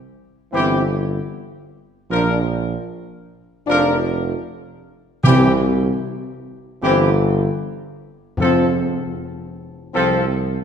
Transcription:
0, 0, Header, 1, 6, 480
1, 0, Start_track
1, 0, Tempo, 785340
1, 1288, Time_signature, 4, 2, 24, 8
1, 6504, End_track
2, 0, Start_track
2, 0, Title_t, "Trumpet section"
2, 0, Program_c, 0, 61
2, 330, Note_on_c, 0, 67, 88
2, 504, Note_off_c, 0, 67, 0
2, 1287, Note_on_c, 0, 70, 88
2, 1462, Note_off_c, 0, 70, 0
2, 2259, Note_on_c, 0, 70, 96
2, 2427, Note_off_c, 0, 70, 0
2, 3202, Note_on_c, 0, 67, 98
2, 3378, Note_off_c, 0, 67, 0
2, 4170, Note_on_c, 0, 67, 91
2, 4341, Note_off_c, 0, 67, 0
2, 5133, Note_on_c, 0, 69, 89
2, 5302, Note_off_c, 0, 69, 0
2, 6082, Note_on_c, 0, 69, 94
2, 6256, Note_off_c, 0, 69, 0
2, 6504, End_track
3, 0, Start_track
3, 0, Title_t, "French horn section"
3, 0, Program_c, 1, 60
3, 322, Note_on_c, 1, 60, 88
3, 500, Note_off_c, 1, 60, 0
3, 1290, Note_on_c, 1, 62, 77
3, 1464, Note_off_c, 1, 62, 0
3, 2239, Note_on_c, 1, 62, 99
3, 2416, Note_off_c, 1, 62, 0
3, 3206, Note_on_c, 1, 60, 86
3, 3380, Note_off_c, 1, 60, 0
3, 4169, Note_on_c, 1, 60, 100
3, 4341, Note_off_c, 1, 60, 0
3, 5129, Note_on_c, 1, 60, 82
3, 5300, Note_off_c, 1, 60, 0
3, 6074, Note_on_c, 1, 60, 91
3, 6252, Note_off_c, 1, 60, 0
3, 6504, End_track
4, 0, Start_track
4, 0, Title_t, "Trombone section"
4, 0, Program_c, 2, 61
4, 323, Note_on_c, 2, 52, 85
4, 500, Note_off_c, 2, 52, 0
4, 1286, Note_on_c, 2, 53, 85
4, 1462, Note_off_c, 2, 53, 0
4, 2246, Note_on_c, 2, 53, 93
4, 2420, Note_off_c, 2, 53, 0
4, 3208, Note_on_c, 2, 52, 91
4, 3381, Note_off_c, 2, 52, 0
4, 4170, Note_on_c, 2, 52, 92
4, 4342, Note_off_c, 2, 52, 0
4, 5131, Note_on_c, 2, 53, 88
4, 5301, Note_off_c, 2, 53, 0
4, 6080, Note_on_c, 2, 53, 96
4, 6256, Note_off_c, 2, 53, 0
4, 6504, End_track
5, 0, Start_track
5, 0, Title_t, "Timpani"
5, 0, Program_c, 3, 47
5, 3201, Note_on_c, 3, 48, 114
5, 3900, Note_off_c, 3, 48, 0
5, 5117, Note_on_c, 3, 41, 117
5, 5813, Note_off_c, 3, 41, 0
5, 6504, End_track
6, 0, Start_track
6, 0, Title_t, "Tuba"
6, 0, Program_c, 4, 58
6, 323, Note_on_c, 4, 31, 87
6, 727, Note_off_c, 4, 31, 0
6, 1287, Note_on_c, 4, 34, 102
6, 1689, Note_off_c, 4, 34, 0
6, 2250, Note_on_c, 4, 29, 94
6, 2647, Note_off_c, 4, 29, 0
6, 3209, Note_on_c, 4, 36, 104
6, 3608, Note_off_c, 4, 36, 0
6, 4169, Note_on_c, 4, 31, 108
6, 4565, Note_off_c, 4, 31, 0
6, 5127, Note_on_c, 4, 41, 94
6, 5523, Note_off_c, 4, 41, 0
6, 6080, Note_on_c, 4, 36, 90
6, 6481, Note_off_c, 4, 36, 0
6, 6504, End_track
0, 0, End_of_file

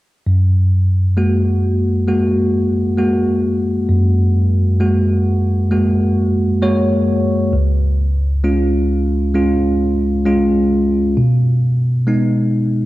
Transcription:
0, 0, Header, 1, 2, 480
1, 0, Start_track
1, 0, Key_signature, 6, "major"
1, 0, Tempo, 909091
1, 137, Time_signature, 4, 2, 24, 8
1, 6787, End_track
2, 0, Start_track
2, 0, Title_t, "Tine electric piano"
2, 0, Program_c, 0, 4
2, 138, Note_on_c, 0, 42, 41
2, 227, Control_c, 0, 64, 127
2, 617, Note_on_c, 0, 56, 31
2, 620, Note_on_c, 0, 58, 30
2, 621, Note_on_c, 0, 66, 36
2, 1083, Note_off_c, 0, 56, 0
2, 1084, Note_off_c, 0, 58, 0
2, 1085, Note_off_c, 0, 66, 0
2, 1097, Note_on_c, 0, 56, 32
2, 1099, Note_on_c, 0, 58, 31
2, 1100, Note_on_c, 0, 66, 36
2, 1563, Note_off_c, 0, 56, 0
2, 1564, Note_off_c, 0, 58, 0
2, 1565, Note_off_c, 0, 66, 0
2, 1573, Note_on_c, 0, 56, 33
2, 1575, Note_on_c, 0, 58, 32
2, 1577, Note_on_c, 0, 66, 37
2, 2037, Note_off_c, 0, 42, 0
2, 2041, Note_off_c, 0, 56, 0
2, 2042, Note_off_c, 0, 58, 0
2, 2043, Note_off_c, 0, 66, 0
2, 2054, Note_on_c, 0, 42, 41
2, 2536, Note_on_c, 0, 56, 34
2, 2536, Note_on_c, 0, 58, 30
2, 2538, Note_on_c, 0, 66, 36
2, 3002, Note_off_c, 0, 56, 0
2, 3002, Note_off_c, 0, 58, 0
2, 3003, Note_off_c, 0, 66, 0
2, 3015, Note_on_c, 0, 56, 36
2, 3015, Note_on_c, 0, 58, 30
2, 3018, Note_on_c, 0, 66, 36
2, 3482, Note_off_c, 0, 56, 0
2, 3482, Note_off_c, 0, 58, 0
2, 3483, Note_off_c, 0, 66, 0
2, 3495, Note_on_c, 0, 56, 34
2, 3497, Note_on_c, 0, 58, 33
2, 3498, Note_on_c, 0, 73, 52
2, 3500, Note_on_c, 0, 66, 38
2, 3955, Note_off_c, 0, 42, 0
2, 3957, Note_off_c, 0, 73, 0
2, 3962, Note_off_c, 0, 56, 0
2, 3963, Note_off_c, 0, 58, 0
2, 3964, Note_off_c, 0, 66, 0
2, 3976, Note_on_c, 0, 37, 45
2, 3985, Control_c, 0, 64, 0
2, 4072, Control_c, 0, 64, 127
2, 4456, Note_on_c, 0, 56, 35
2, 4457, Note_on_c, 0, 61, 33
2, 4459, Note_on_c, 0, 65, 38
2, 4922, Note_off_c, 0, 56, 0
2, 4923, Note_off_c, 0, 61, 0
2, 4924, Note_off_c, 0, 65, 0
2, 4935, Note_on_c, 0, 56, 36
2, 4937, Note_on_c, 0, 61, 34
2, 4939, Note_on_c, 0, 65, 40
2, 5402, Note_off_c, 0, 56, 0
2, 5403, Note_off_c, 0, 61, 0
2, 5404, Note_off_c, 0, 65, 0
2, 5414, Note_on_c, 0, 56, 38
2, 5416, Note_on_c, 0, 61, 33
2, 5419, Note_on_c, 0, 65, 41
2, 5875, Note_off_c, 0, 37, 0
2, 5881, Note_off_c, 0, 56, 0
2, 5882, Note_off_c, 0, 61, 0
2, 5884, Note_off_c, 0, 65, 0
2, 5898, Note_on_c, 0, 47, 44
2, 5903, Control_c, 0, 64, 0
2, 5987, Control_c, 0, 64, 127
2, 6373, Note_on_c, 0, 56, 35
2, 6375, Note_on_c, 0, 59, 33
2, 6377, Note_on_c, 0, 63, 38
2, 6787, Note_off_c, 0, 47, 0
2, 6787, Note_off_c, 0, 56, 0
2, 6787, Note_off_c, 0, 59, 0
2, 6787, Note_off_c, 0, 63, 0
2, 6787, End_track
0, 0, End_of_file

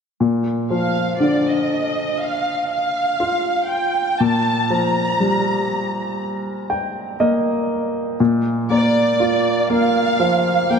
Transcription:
0, 0, Header, 1, 3, 480
1, 0, Start_track
1, 0, Key_signature, -2, "major"
1, 0, Tempo, 1000000
1, 95, Time_signature, 4, 2, 24, 8
1, 5181, End_track
2, 0, Start_track
2, 0, Title_t, "Violin section"
2, 0, Program_c, 0, 48
2, 346, Note_on_c, 0, 77, 56
2, 564, Note_off_c, 0, 77, 0
2, 585, Note_on_c, 0, 74, 50
2, 700, Note_off_c, 0, 74, 0
2, 709, Note_on_c, 0, 75, 53
2, 1062, Note_off_c, 0, 75, 0
2, 1065, Note_on_c, 0, 77, 58
2, 1296, Note_off_c, 0, 77, 0
2, 1301, Note_on_c, 0, 77, 66
2, 1759, Note_off_c, 0, 77, 0
2, 1782, Note_on_c, 0, 79, 62
2, 2018, Note_off_c, 0, 79, 0
2, 2022, Note_on_c, 0, 81, 74
2, 2259, Note_off_c, 0, 81, 0
2, 2267, Note_on_c, 0, 82, 71
2, 2981, Note_off_c, 0, 82, 0
2, 4182, Note_on_c, 0, 74, 69
2, 4639, Note_off_c, 0, 74, 0
2, 4664, Note_on_c, 0, 77, 75
2, 5139, Note_off_c, 0, 77, 0
2, 5144, Note_on_c, 0, 79, 82
2, 5181, Note_off_c, 0, 79, 0
2, 5181, End_track
3, 0, Start_track
3, 0, Title_t, "Grand piano"
3, 0, Program_c, 1, 0
3, 97, Note_on_c, 1, 46, 44
3, 198, Control_c, 1, 64, 127
3, 338, Note_on_c, 1, 53, 34
3, 577, Note_on_c, 1, 50, 33
3, 1277, Note_off_c, 1, 53, 0
3, 1517, Note_off_c, 1, 50, 0
3, 1536, Note_on_c, 1, 65, 39
3, 1997, Note_off_c, 1, 46, 0
3, 2001, Note_off_c, 1, 65, 0
3, 2017, Note_on_c, 1, 46, 46
3, 2022, Control_c, 1, 64, 0
3, 2098, Control_c, 1, 64, 127
3, 2257, Note_on_c, 1, 53, 37
3, 2495, Note_on_c, 1, 55, 37
3, 3197, Note_off_c, 1, 53, 0
3, 3215, Note_on_c, 1, 79, 47
3, 3436, Note_off_c, 1, 55, 0
3, 3438, Note_off_c, 1, 79, 0
3, 3456, Note_on_c, 1, 58, 43
3, 3456, Note_on_c, 1, 75, 52
3, 3916, Note_off_c, 1, 75, 0
3, 3917, Note_off_c, 1, 46, 0
3, 3921, Note_off_c, 1, 58, 0
3, 3936, Note_on_c, 1, 46, 48
3, 3941, Control_c, 1, 64, 0
3, 4028, Control_c, 1, 64, 127
3, 4175, Note_on_c, 1, 58, 42
3, 4416, Note_on_c, 1, 65, 45
3, 4647, Note_off_c, 1, 58, 0
3, 4654, Note_on_c, 1, 58, 43
3, 4894, Note_on_c, 1, 53, 41
3, 5127, Note_off_c, 1, 58, 0
3, 5135, Note_on_c, 1, 58, 37
3, 5181, Note_off_c, 1, 46, 0
3, 5181, Note_off_c, 1, 53, 0
3, 5181, Note_off_c, 1, 58, 0
3, 5181, Note_off_c, 1, 65, 0
3, 5181, End_track
0, 0, End_of_file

